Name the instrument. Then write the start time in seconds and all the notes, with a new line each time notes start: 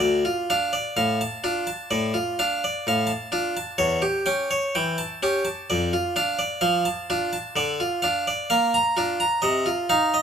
harpsichord
0.00 D2 D5
0.25 F4
0.50 D4 F5
0.73 D5
0.97 A2 F5
1.21 A5
1.44 D4 F4
1.67 A5
1.91 A2 D5
2.14 F4
2.39 D4 F5
2.64 D5
2.87 A2 F5
3.07 A5
3.32 D4 F4
3.57 A5
3.78 E2 C#5
4.02 G4
4.26 C#4 G5
4.51 C#5
4.75 E3 G5
4.98 A5
5.23 C#4 G4
5.45 A5
5.70 F2 D5
5.93 F4
6.16 D4 F5
6.39 D5
6.61 F3 F5
6.85 A5
7.10 D4 F4
7.33 A5
7.56 D3 D5
7.80 F4
8.02 D4 F5
8.27 D5
8.50 A#3 F5
8.74 A#5
8.97 D4 F4
9.20 A#5
9.42 C3 D#5
9.66 F4
9.90 D#4 F5
10.14 D#5